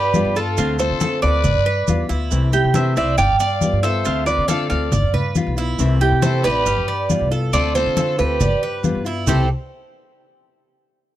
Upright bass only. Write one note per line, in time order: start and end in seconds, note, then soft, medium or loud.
0.00 0.23 G2 medium
0.25 0.56 G2 loud
0.58 0.89 D2 loud
0.91 1.21 D3 medium
1.23 1.44 D2 loud
1.44 1.57 G1 medium
1.56 1.86 G2 medium
1.88 2.08 E2 medium
2.10 2.29 D2 medium
2.31 2.62 C2 loud
2.64 2.95 C3 medium
2.97 3.18 C2 medium
3.19 3.31 G1 loud
3.29 3.71 G2 medium
3.73 4.04 G2 loud
4.06 4.36 D2 loud
4.38 4.69 D3 loud
4.71 4.91 D2 medium
4.92 5.05 G1 loud
5.03 5.44 G2 medium
5.47 5.78 B1 loud
5.79 6.10 C2 loud
6.12 6.43 C3 loud
6.44 6.65 A1 loud
6.66 6.78 G1 loud
6.77 7.18 G2 medium
7.20 7.51 C2 medium
7.53 7.84 D2 loud
7.86 8.17 D3 loud
8.19 8.40 D2 loud
8.41 8.53 G1 loud
8.51 8.93 G2 medium
8.95 9.26 G2 medium
9.27 9.48 C2 loud